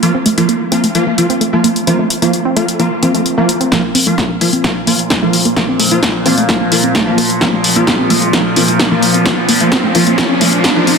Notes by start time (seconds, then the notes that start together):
0.03 F3 A#3 F4, closed hi-hat
0.14 C4
0.26 A3, closed hi-hat
0.38 F3 A#3 F4, closed hi-hat
0.49 A#3, closed hi-hat
0.72 F3 A#3 C4 F4, closed hi-hat
0.84 A3, closed hi-hat
0.95 F3 A#3 F4, closed hi-hat
1.07 A#3
1.18 F3 A#3 F4, closed hi-hat
1.30 C4, closed hi-hat
1.41 A3, closed hi-hat
1.53 F3 A#3 F4
1.64 A#3, closed hi-hat
1.76 closed hi-hat
1.87 F3 A#3 C4 F4, closed hi-hat
1.99 A3
2.10 closed hi-hat
2.22 F3 A#3 F4, closed hi-hat
2.33 closed hi-hat
2.45 C4
2.56 F3 A3 A#3 F4, closed hi-hat
2.68 closed hi-hat
2.79 F3 A#3 F4, closed hi-hat
3.03 F3 A#3 C4 F4, closed hi-hat
3.14 A3, closed hi-hat
3.26 closed hi-hat
3.38 F3 A#3 F4
3.49 closed hi-hat
3.60 C4, closed hi-hat
3.72 A#2 F3 A#3 F4, kick, snare, closed hi-hat, riser
3.95 C4, open hi-hat
4.07 F3 A3 A#3 F4, closed hi-hat
4.18 kick, snare, closed hi-hat
4.30 A#3
4.41 F3 A#3 F4, open hi-hat
4.53 C4, closed hi-hat
4.64 F3 A3 A#3 F4, kick, snare, closed hi-hat
4.87 F3 A#3 F4, open hi-hat
4.99 closed hi-hat
5.10 C4, kick, snare, closed hi-hat
5.22 F3 A3 A#3 F4
5.33 open hi-hat
5.45 A#3, closed hi-hat
5.56 F3 A#3 F4, kick, snare, closed hi-hat
5.68 C4
5.79 A3, open hi-hat
5.91 F3 A#3 F4, closed hi-hat
6.03 A#3, kick, snare, closed hi-hat
6.26 F3 A#3 C4 F4, open hi-hat
6.37 A3, closed hi-hat
6.49 F3 A#3 F4, kick, snare, closed hi-hat
6.61 A#3
6.72 F3 A#3 F4, open hi-hat
6.84 C4, closed hi-hat
6.95 A3, kick, snare, closed hi-hat
7.07 F3 A#3 F4
7.18 A#3, open hi-hat
7.30 closed hi-hat
7.41 F3 A#3 C4 F4, kick, snare, closed hi-hat
7.53 A3
7.64 open hi-hat
7.76 F3 A#3 F4, closed hi-hat
7.87 kick, snare, closed hi-hat
7.99 C4
8.10 F3 A3 A#3 F4, open hi-hat
8.22 closed hi-hat
8.33 F3 A#3 F4, kick, snare, closed hi-hat
8.56 F3 A#3 C4 F4, open hi-hat
8.68 A3, closed hi-hat
8.79 kick, snare, closed hi-hat
8.91 F3 A#3 F4
9.02 open hi-hat
9.14 C4, closed hi-hat
9.25 F3 A3 A#3 F4, kick, snare, closed hi-hat
9.49 A#3, open hi-hat
9.60 F3 A#3 F4, closed hi-hat
9.72 C4, kick, snare, closed hi-hat
9.84 A3
9.95 F3 A#3 F4, open hi-hat
10.07 A#3, closed hi-hat
10.18 F3 A#3 F4, kick, snare, closed hi-hat
10.30 C4
10.41 F3 A3 A#3 F4, open hi-hat
10.53 closed hi-hat
10.64 A#3, kick, snare, closed hi-hat
10.76 F3 A#3 F4
10.87 C4, open hi-hat